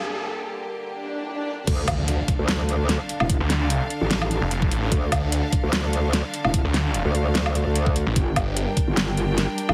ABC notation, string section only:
X:1
M:4/4
L:1/8
Q:"Swing 16ths" 1/4=148
K:Dm
V:1 name="String section"
[G,,D,B,G]8 | [D,DAf]8- | [D,DAf]8- | [D,DAf]8- |
[D,DAf]8 | [G,DBg]8 |]